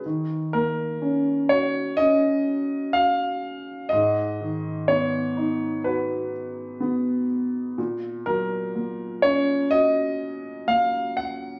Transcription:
X:1
M:4/4
L:1/8
Q:1/4=62
K:Ebm
V:1 name="Grand piano"
z B2 d e2 f2 | e2 d2 c3 z | z B2 d e2 f g |]
V:2 name="Upright piano"
E, B, D G D2 G2 | A,, E, C E G2 C2 | B,, G, B, D G2 B,2 |]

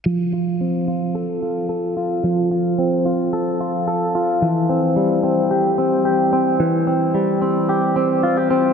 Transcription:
X:1
M:4/4
L:1/16
Q:1/4=110
K:F
V:1 name="Clean electric guitar"
F,2 F2 C2 F2 A2 F2 A2 F2 | F,2 F2 C2 F2 A2 F2 A2 F2 | E,2 C2 G,2 C2 G2 C2 G2 C2 | E,2 C2 G,2 C2 G2 C2 F G C2 |]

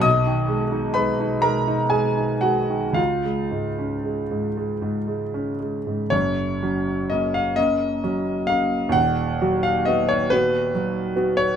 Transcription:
X:1
M:6/8
L:1/16
Q:3/8=42
K:F#
V:1 name="Grand piano"
[dd']4 [Bb]2 [Aa]2 [Gg]2 [Ff]2 | [Ee]8- [Ee]2 z2 | c4 d e d4 e2 | f3 e d c B4- B c |]
V:2 name="Grand piano" clef=bass
B,,, D, G, D G, D G, D G, D G, D, | C,, G, G,, C G, G,, G, G,, G, C G, G,, | [F,,,F,,]2 [F,C]2 [A,C]2 [A,C]2 [F,C]2 [A,C]2 | [D,,,D,,]2 [F,F]2 [B,F]2 [B,F]2 [F,F]2 [B,F]2 |]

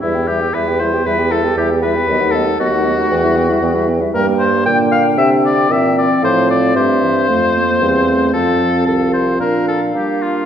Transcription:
X:1
M:4/4
L:1/16
Q:1/4=115
K:Em
V:1 name="Flute"
e g e g e g e g e g e g e g e g | ^d f d f d f d f g e g e g e g e | [K:F] g4 g8 g4 | f4 e4 f4 f4 |
f8 f8 |]
V:2 name="Oboe"
E2 G2 B2 c2 B2 A2 G2 B2- | B2 A2 F8- F2 z2 | [K:F] B2 c2 g2 f2 e2 d2 e2 d2 | c2 d2 c12 |
A4 A2 c2 B2 A2 G2 F2 |]
V:3 name="Clarinet"
E G E G E G E G E G E G E G E G | B, ^D B, D B, D B, D B, E B, E B, E B, E | [K:F] B,8 C4 C4 | C8 A,2 B,2 C4 |
C8 D4 D4 |]
V:4 name="French horn" clef=bass
G, B, G, B, G, B, G, B, G, B, G, B, G, B, G, B, | F, A, F, A, F, A, F, A, E, G, E, G, E, G, E, G, | [K:F] G,4 D,8 E,4 | F,4 A,2 E,2 F,4 G,2 A,2 |
F,2 F,8- F,2 G,4 |]
V:5 name="Bassoon" clef=bass
E,,4 E,,4 E,,4 E,,4 | ^D,,4 D,,4 E,,4 E,,4 | [K:F] G,,4 B,,4 C,4 B,,4 | A,,4 G,,4 F,,4 E,,4 |
F,,4 C,,4 B,,4 B,4 |]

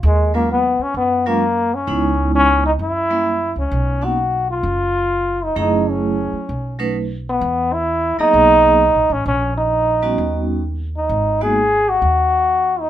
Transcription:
X:1
M:4/4
L:1/8
Q:"Swing" 1/4=130
K:Cblyd
V:1 name="Trombone"
A, B, C D C B,2 D- | D2 D E _F3 D- | D ^F2 =F4 ^D | E D4 z2 =B,- |
=B, =E2 ^D4 _D | D E4 z2 E- | E A2 G4 E |]
V:2 name="Vibraphone"
z [G,A,B,DF] z3 [G,A,B,DF] z2 | [A,CDE_F]3 z2 [=G,B,DF] z2 | z [^A,=B,^C^D^F] z6 | [G,=A,D_F_A]3 z2 [^F,=A,^C^D=B] z2 |
z3 [^F,^A,=B,^D^G]3 z2 | z3 [=G,CDE_G]3 z2 | z [A,B,CEG] z6 |]
V:3 name="Upright bass" clef=bass
E,,3 z G,,4 | D,,4 G,,3 D,, | =B,,,4 ^F,,,4 | G,,,3 z =B,,,4 |
=E,,3 z =B,,,2- (3B,,, ^A,,, =A,,, | B,,,4 E,,4 | A,,,4 E,,4 |]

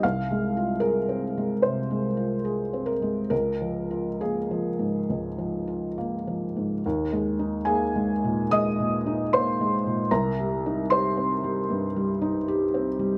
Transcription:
X:1
M:4/4
L:1/8
Q:1/4=74
K:Ebmix
V:1 name="Felt piano"
f2 B2 c3 B | B2 A4 z2 | z2 [Aa]2 [ee']2 [cc']2 | [Bb]2 [cc']6 |]
V:2 name="Felt piano" clef=bass
(3C,, A, F (3A C A, (3C, A, F (3A C A, | (3D,, F, F (3B, F, A,, (3D,, F, F (3B, F, A,, | (3E,, A, E (3B, A, B,, (3A, B,, E (3B, A, B,, | (3C,, G, E (3G C G, (3G,, G, E (3G C G, |]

